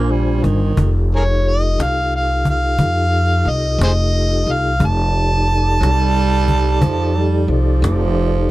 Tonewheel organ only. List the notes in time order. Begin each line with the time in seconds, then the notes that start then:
Already playing: D4 F4 C5 G#5
0.76 D#4 F4 G4 A4
4.79 D#4 G4 A4 D5